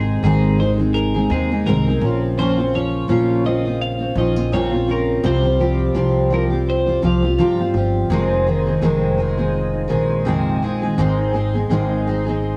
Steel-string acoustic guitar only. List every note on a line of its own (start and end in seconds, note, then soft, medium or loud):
0.00 0.22 G#3 medium
0.00 0.23 C4 medium
0.00 0.24 D#4 medium
0.00 0.24 G#4 medium
0.24 0.59 G#2 medium
0.24 0.59 D#3 medium
0.24 0.57 G#3 medium
0.24 0.59 C4 medium
0.24 0.59 D#4 medium
0.24 0.59 G#4 medium
0.59 0.78 G#3 medium
0.59 0.78 C4 medium
0.59 0.78 D#4 medium
0.59 0.76 G#4 medium
0.78 1.15 G#3 soft
0.78 1.14 C4 soft
0.78 1.14 D#4 soft
0.78 1.13 G#4 medium
1.14 1.29 G#3 soft
1.14 1.30 C4 soft
1.14 1.30 D#4 soft
1.14 1.30 G#4 medium
1.30 1.50 G#3 medium
1.30 1.50 C4 medium
1.30 1.50 D#4 medium
1.30 1.49 G#4 medium
1.50 1.66 G#3 soft
1.50 1.66 C4 soft
1.50 1.66 D#4 soft
1.50 1.66 G#4 soft
1.66 1.86 G#2 medium
1.66 1.86 D#3 medium
1.66 1.86 G#3 medium
1.66 1.86 C4 medium
1.66 1.86 D#4 medium
1.66 1.86 G#4 medium
1.87 2.02 G#3 soft
1.87 2.02 C4 medium
1.87 2.03 D#4 medium
1.87 2.02 G#4 medium
2.02 2.37 F3 medium
2.02 2.39 C4 medium
2.02 2.38 C#4 medium
2.02 2.39 F4 medium
2.38 2.58 A#2 medium
2.38 2.58 F3 loud
2.38 2.58 C4 loud
2.38 2.58 C#4 medium
2.38 2.57 F4 medium
2.58 2.74 C4 medium
2.58 2.74 C#4 soft
2.58 2.74 F4 medium
2.74 3.08 F3 medium
2.74 3.08 C#4 medium
2.74 3.09 F4 medium
3.08 3.44 A#2 medium
3.08 3.43 F3 medium
3.08 3.44 C#4 medium
3.08 3.45 F4 loud
3.44 3.64 F3 medium
3.44 3.65 C4 medium
3.44 3.65 C#4 medium
3.44 3.64 F4 medium
3.65 3.99 C4 soft
3.65 4.01 C#4 soft
3.65 3.98 F4 medium
3.99 4.16 C4 medium
3.99 4.16 C#4 soft
3.99 4.16 F4 medium
4.16 4.36 F3 medium
4.16 4.36 C4 medium
4.16 4.37 C#4 medium
4.16 4.35 F4 medium
4.36 4.52 C4 soft
4.36 4.52 C#4 soft
4.36 4.52 F4 medium
4.52 4.72 A#2 medium
4.52 4.72 F3 medium
4.52 4.72 C4 medium
4.52 4.73 C#4 medium
4.52 4.70 F4 medium
4.71 4.89 C4 soft
4.71 4.87 C#4 soft
4.71 4.88 F4 medium
4.87 5.23 F3 medium
4.87 5.23 C4 medium
4.87 5.24 C#4 medium
4.87 5.24 F4 medium
5.24 5.44 C3 loud
5.24 5.44 F3 loud
5.24 5.44 C4 medium
5.24 5.43 F4 medium
5.24 5.42 G4 medium
5.43 5.59 C4 soft
5.43 5.59 F4 soft
5.43 5.60 G4 medium
5.58 5.93 F3 medium
5.58 5.94 C4 medium
5.58 5.95 F4 medium
5.58 5.94 G4 medium
5.94 6.31 C3 medium
5.94 6.29 F3 medium
5.94 6.30 C4 medium
5.94 6.31 F4 medium
5.94 6.32 G4 medium
6.30 6.51 F3 medium
6.30 6.51 C4 medium
6.30 6.50 F4 medium
6.30 6.49 G4 medium
6.50 6.87 C4 soft
6.50 6.86 F4 medium
6.50 6.85 G4 medium
6.86 7.02 C4 soft
6.86 7.03 F4 medium
6.86 7.03 G4 medium
7.02 7.22 F3 medium
7.02 7.23 C4 medium
7.02 7.23 F4 medium
7.02 7.21 G4 medium
7.22 7.38 C4 soft
7.22 7.38 F4 medium
7.22 7.39 G4 soft
7.38 7.59 C3 medium
7.38 7.59 F3 medium
7.38 7.59 C4 medium
7.38 7.59 F4 medium
7.38 7.57 G4 loud
7.59 7.74 C4 soft
7.59 7.75 F4 soft
7.59 7.75 G4 medium
7.75 8.11 F3 medium
7.75 8.10 C4 medium
7.75 8.11 F4 medium
7.75 8.12 G4 medium
8.10 8.46 F2 loud
8.10 8.47 C3 medium
8.10 8.46 D#3 medium
8.10 8.46 G#3 medium
8.10 8.46 C4 loud
8.10 8.47 G#4 loud
8.47 8.67 D#3 medium
8.47 8.66 G#3 medium
8.47 8.65 C4 medium
8.47 8.64 G#4 medium
8.66 8.82 D#3 soft
8.66 8.81 G#3 soft
8.66 8.82 C4 soft
8.66 8.82 G#4 medium
8.81 9.18 F2 medium
8.81 9.18 C3 medium
8.81 9.17 D#3 medium
8.81 9.17 G#3 medium
8.81 9.19 C4 medium
8.81 9.19 G#4 medium
9.18 9.38 D#3 medium
9.18 9.38 G#3 medium
9.18 9.37 C4 medium
9.18 9.36 G#4 medium
9.37 9.87 D#3 soft
9.37 9.88 G#3 medium
9.37 9.88 C4 medium
9.37 9.89 G#4 medium
9.88 10.24 D#3 medium
9.88 10.25 G#3 medium
9.88 10.25 C4 medium
9.88 10.26 G#4 medium
10.25 10.62 F2 medium
10.25 10.62 C3 medium
10.25 10.61 D#3 medium
10.25 10.61 G#3 medium
10.25 10.62 C4 loud
10.25 10.62 G#4 medium
10.62 10.82 D#3 medium
10.62 10.82 G#3 medium
10.62 10.82 C4 medium
10.62 10.80 G#4 medium
10.82 10.97 D#3 medium
10.82 10.97 G#3 medium
10.82 10.97 C4 medium
10.82 10.98 G#4 medium
10.98 11.34 G#2 medium
10.98 11.34 D#3 medium
10.98 11.31 G#3 medium
10.98 11.33 C4 loud
10.98 11.34 D#4 loud
10.98 11.35 G#4 loud
11.33 11.53 G#3 medium
11.33 11.54 C4 medium
11.33 11.54 D#4 medium
11.33 11.52 G#4 medium
11.53 11.70 G#3 soft
11.53 11.70 C4 soft
11.53 11.70 D#4 medium
11.53 11.70 G#4 soft
11.70 12.06 G#2 medium
11.70 12.06 D#3 medium
11.70 12.06 G#3 medium
11.70 12.06 C4 medium
11.70 12.07 D#4 medium
11.70 12.07 G#4 loud
12.07 12.26 G#3 medium
12.07 12.26 C4 medium
12.07 12.26 D#4 medium
12.07 12.25 G#4 medium
12.27 12.57 G#3 medium
12.27 12.57 C4 medium
12.27 12.57 D#4 medium
12.27 12.57 G#4 medium